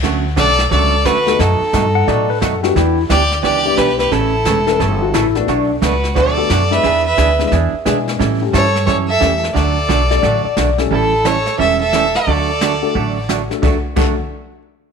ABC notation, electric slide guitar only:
X:1
M:4/4
L:1/16
Q:"Swing" 1/4=177
K:D
V:1 name="Electric slide guitar"
z16 | z6 f2 d2 B2 A2 F2 | E3 z12 z | z6 B2 A2 F2 E2 D2- |
D3 z12 z | z16 | z16 | z6 d4 d4 z2 |
z16 | z16 | z16 |]